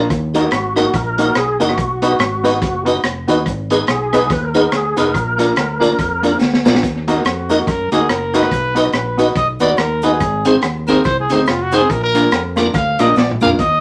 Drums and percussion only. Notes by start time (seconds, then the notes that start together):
0.10 kick, closed hi-hat, cabasa
0.35 closed hi-hat, cabasa
0.51 cross-stick, closed hi-hat, cabasa
0.76 cross-stick, closed hi-hat, cabasa
0.94 kick, closed hi-hat, cabasa
1.18 closed hi-hat, cabasa
1.35 cross-stick, closed hi-hat, cabasa
1.60 closed hi-hat, cabasa
1.69 cross-stick
1.78 kick, closed hi-hat, cabasa
2.02 closed hi-hat, cabasa
2.19 cross-stick, closed hi-hat, cabasa
2.45 closed hi-hat, cabasa
2.62 kick, closed hi-hat, cabasa
2.86 closed hi-hat, cabasa
3.03 cross-stick, closed hi-hat, cabasa
3.28 closed hi-hat, cabasa
3.46 kick, closed hi-hat, cabasa
3.70 closed hi-hat, cabasa
3.87 cross-stick, closed hi-hat, cabasa
4.13 cross-stick, closed hi-hat, cabasa
4.30 kick, closed hi-hat, cabasa
4.55 closed hi-hat, cabasa
4.72 cross-stick, closed hi-hat, cabasa
4.97 closed hi-hat, cabasa
5.14 kick, closed hi-hat, cabasa
5.39 closed hi-hat, cabasa
5.56 cross-stick, closed hi-hat, cabasa
5.82 closed hi-hat, cabasa
5.99 kick, closed hi-hat, cabasa
6.23 closed hi-hat, cabasa
6.40 snare, cabasa
6.54 snare
6.66 snare, cabasa
6.75 snare
6.83 kick, closed hi-hat, cabasa
7.08 closed hi-hat, cabasa
7.25 cross-stick, closed hi-hat, cabasa
7.50 closed hi-hat, cabasa
7.67 kick, closed hi-hat, cabasa
7.92 closed hi-hat, cabasa
8.09 cross-stick, closed hi-hat, cabasa
8.34 closed hi-hat, cabasa
8.43 cross-stick
8.51 kick, closed hi-hat, cabasa
8.76 closed hi-hat, cabasa
8.93 cross-stick, closed hi-hat, cabasa
9.19 closed hi-hat, cabasa
9.36 kick, closed hi-hat, cabasa
9.60 closed hi-hat, cabasa
9.77 cross-stick, closed hi-hat, cabasa
10.02 closed hi-hat, cabasa
10.20 kick, closed hi-hat, cabasa
10.45 closed hi-hat, cabasa
10.62 cross-stick, closed hi-hat, cabasa
10.87 closed hi-hat, cabasa
11.04 kick, closed hi-hat, cabasa
11.30 closed hi-hat, cabasa
11.46 cross-stick, closed hi-hat, cabasa
11.72 closed hi-hat, cabasa
11.90 kick, closed hi-hat, cabasa
12.15 closed hi-hat, cabasa
12.31 cross-stick, closed hi-hat, cabasa
12.57 cross-stick, closed hi-hat, cabasa
12.74 kick, closed hi-hat, cabasa
12.99 closed hi-hat, cabasa
13.16 snare, cabasa
13.31 mid tom
13.41 cabasa
13.45 floor tom
13.59 kick, closed hi-hat, cabasa